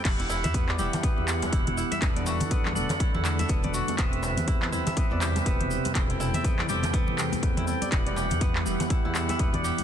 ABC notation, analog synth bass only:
X:1
M:4/4
L:1/16
Q:"Swing 16ths" 1/4=122
K:Em
V:1 name="Analog synth bass" clef=bass
E,,,3 E,,3 E,,, z2 E,,2 z E,,,2 z2 | E,,,3 E,,3 E,,, z2 E,,2 z E,,,2 z2 | E,,,3 E,,3 E,,, z2 E,,2 z E,,,2 z2 | E,,,3 E,,3 E,,,3 E,,2 z E,,2 z2 |
E,,,3 E,,3 E,,, z2 E,,2 z E,,,2 z2 |]